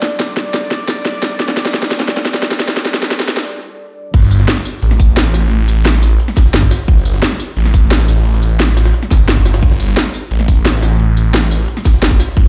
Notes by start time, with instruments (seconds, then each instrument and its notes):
Already playing: analog synth pad G3 D4 A4 D5
0.02 snare, closed hi-hat
0.20 snare, closed hi-hat, tambourine
0.28 closed hi-hat
0.37 snare, closed hi-hat
0.54 snare, closed hi-hat, tambourine
0.71 snare, closed hi-hat
0.88 snare, closed hi-hat, tambourine
1.05 snare, closed hi-hat
1.23 snare, closed hi-hat, tambourine
1.40 snare, closed hi-hat
1.48 snare
1.57 snare, closed hi-hat, tambourine
1.65 snare, closed hi-hat
1.74 snare, closed hi-hat
1.83 snare
1.91 snare, closed hi-hat, tambourine
2.00 snare
2.08 snare, closed hi-hat
2.17 snare
2.25 snare, closed hi-hat, tambourine
2.34 snare
2.43 snare, closed hi-hat
2.51 snare
2.60 snare, closed hi-hat, tambourine
2.68 snare
2.77 snare, closed hi-hat
2.85 snare
2.94 snare, closed hi-hat, tambourine
3.02 snare, closed hi-hat, tambourine
3.11 snare, closed hi-hat
3.20 snare, closed hi-hat
3.28 snare, closed hi-hat, tambourine
3.37 snare, closed hi-hat, tambourine
4.14 detuned saw bass G1, kick, closed hi-hat, crash
4.23 snare
4.31 closed hi-hat, tambourine
4.40 snare
4.48 snare, closed hi-hat
4.57 snare, closed hi-hat
4.65 closed hi-hat, tambourine
4.74 closed hi-hat
4.82 detuned saw bass A1, closed hi-hat
4.91 snare
5.00 kick, closed hi-hat, tambourine
5.08 closed hi-hat
5.17 snare, closed hi-hat
5.34 snare, closed hi-hat, tambourine
5.51 closed hi-hat
5.68 closed hi-hat, tambourine
5.85 snare, closed hi-hat
5.94 snare, closed hi-hat
6.02 closed hi-hat, open hi-hat, tambourine
6.11 closed hi-hat
6.20 closed hi-hat
6.28 snare
6.37 kick, snare, closed hi-hat, tambourine
6.45 snare, closed hi-hat
6.54 detuned saw bass G1, snare, closed hi-hat
6.62 kick, snare
6.71 snare, closed hi-hat, tambourine
6.88 detuned saw bass G1, kick, closed hi-hat
6.97 snare
7.05 closed hi-hat, tambourine
7.14 snare
7.22 snare, closed hi-hat
7.31 snare, closed hi-hat
7.40 closed hi-hat, tambourine
7.48 closed hi-hat
7.57 detuned saw bass A1, closed hi-hat
7.65 snare
7.74 kick, closed hi-hat, tambourine
7.83 closed hi-hat
7.91 snare, closed hi-hat
8.08 closed hi-hat, tambourine
8.17 closed hi-hat
8.25 closed hi-hat
8.34 snare
8.42 closed hi-hat, tambourine
8.60 snare, closed hi-hat
8.68 snare, closed hi-hat
8.77 snare, closed hi-hat, open hi-hat, tambourine
8.85 snare, closed hi-hat
8.94 closed hi-hat
9.03 snare
9.11 detuned saw bass G1, kick, snare, closed hi-hat, tambourine
9.20 closed hi-hat
9.28 snare, closed hi-hat
9.37 kick
9.45 snare, closed hi-hat, tambourine
9.54 snare, closed hi-hat
9.63 detuned saw bass G1, kick, closed hi-hat
9.71 snare
9.80 closed hi-hat, tambourine
9.88 snare
9.97 snare, closed hi-hat
10.05 snare, closed hi-hat
10.14 closed hi-hat, tambourine
10.23 closed hi-hat
10.31 detuned saw bass A1, closed hi-hat
10.40 snare
10.48 kick, closed hi-hat, tambourine
10.57 closed hi-hat
10.65 snare, closed hi-hat
10.83 snare, closed hi-hat, tambourine
11.00 closed hi-hat
11.17 closed hi-hat, tambourine
11.34 snare, closed hi-hat
11.43 snare, closed hi-hat
11.51 closed hi-hat, open hi-hat, tambourine
11.60 closed hi-hat
11.68 closed hi-hat
11.77 snare
11.85 kick, snare, closed hi-hat, tambourine
11.94 snare, closed hi-hat
12.02 detuned saw bass G1, snare, closed hi-hat
12.11 kick, snare
12.20 snare, closed hi-hat, tambourine
12.37 detuned saw bass G1, kick, closed hi-hat